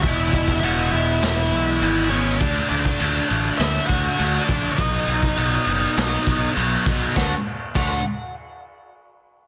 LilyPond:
<<
  \new Staff \with { instrumentName = "Lead electric guitar" } { \time 4/4 \key d \lydian \tempo 4 = 101 <e' e''>4 <fis' fis''>8 <e' e''>2 <cis' cis''>8 | <d' d''>8 <d' d''>4 r8 <e' e''>8 <fis' fis''>4 <d' d''>8 | <dis' dis''>2. r4 | fis''8 r8 fis''8 r2 r8 | }
  \new Staff \with { instrumentName = "Clean electric guitar" } { \clef bass \time 4/4 \key d \lydian <e, b, e gis b e'>8. <e gis b e'>16 <e, b, e gis b e'>8 <e gis b e'>8. r16 <e gis b e'>16 <e gis b e'>16 <e, b, e gis b e'>8 <e gis b e'>16 <e gis b e'>16 | d8 d8 a8 d'8 d8 a8 fis'8 d'8 | b,8 fis8 b8 dis'8 fis8 b8 fis'8 dis'8 | <d fis a d' fis'>16 r8. <d fis a d' fis'>8 r2 r8 | }
  \new Staff \with { instrumentName = "Distorted electric guitar" } { \clef bass \time 4/4 \key d \lydian <e, b, e>4 <e, b, e>8 <e, b, e>8 <e, b, e>4 <e, b, e>8 <e, b, e>8 | <d a d'>4 <d a d'>8 <d a d'>8 <d a d'>4 <d a d'>8 <d a d'>8 | <b, fis b>4 <b, fis b>8 <b, fis b>8 <b, fis b>4 <b, fis b>8 <b, fis b>8 | <d a d'>8 r8 <d a d'>8 r2 r8 | }
  \new Staff \with { instrumentName = "Picked electric bass" } { \clef bass \time 4/4 \key d \lydian e,,8 e,,8 e,,8 e,,8 e,,8 b,,8 gis,,4 | d,8 d,8 d,8 a,,8 d,8 d,8 d,8 bes,,8 | b,,8 b,,8 b,,8 fis,,8 b,,8 b,,8 b,,8 b,,8 | d,8 r8 d,8 r2 r8 | }
  \new DrumStaff \with { instrumentName = "Drums" } \drummode { \time 4/4 <cymc bd>8 bd16 bd16 cymc4 <cymc sn>4 cymc4 | <cymc bd>8 cymc16 bd16 cymc8 cymc8 <cymc sn>8 <cymc bd>8 cymc8 <cymc bd>8 | <cymc bd>8 cymc16 bd16 cymc8 cymc8 <cymc sn>8 <cymc bd>8 cymc8 <cymc bd>8 | <bd sn>4 <cymc bd>4 r4 r4 | }
>>